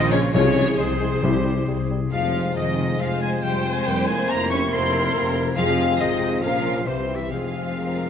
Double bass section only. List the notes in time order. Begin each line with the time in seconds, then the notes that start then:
Already playing: A#1
0.34 C2
0.78 C2
1.22 C2
1.67 C2
2.12 F2
2.55 F2
3.00 F2
3.43 F2
3.85 F2
4.29 F2
4.72 F2
5.13 F2
5.57 F2
6.00 G#1
6.42 A#1
6.86 C2
7.31 F2